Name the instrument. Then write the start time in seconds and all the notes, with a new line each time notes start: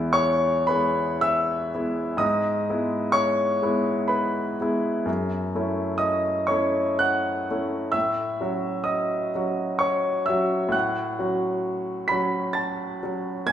grand piano
Already playing: E2 G#3 B3 E4
0.13 C#5 C#6
0.67 G#3 B3 E4 B4 B5
1.21 E5 E6
1.74 G#3 B3 E4
2.17 G#2 D#5 D#6
2.70 G#3 B3 E4
3.12 C#5 C#6
3.62 G#3 B3 E4
4.08 B4 B5
4.61 G#3 B3 E4
5.06 F#2
5.55 A3 C#4 E4
5.98 D#5 D#6
6.47 A3 C#4 C#5 C#6
6.51 E4
6.99 F#5 F#6
7.51 A3 C#4 E4
7.92 A2 E5 E6
8.41 F#3 C#4 F#4
8.84 D#5 D#6
9.35 F#3 C#4 F#4
9.79 C#5 C#6
10.26 F#3 C#4 E5 E6
10.30 F#4
10.69 A2 F#6
10.73 F#5
11.19 F#3 C#4 F#4
12.08 F#3 C#4 F#4 B5 B6
12.53 A5 A6
13.03 F#3 C#4 F#4
13.46 A#2 G#5 G#6